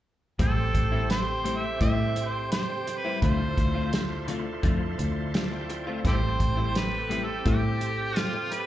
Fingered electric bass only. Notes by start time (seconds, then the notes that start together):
0.40 A1
0.75 A1
1.81 A2
3.22 D2
3.58 D2
4.64 F2
4.99 D2
6.05 A1
6.40 A1
7.46 A2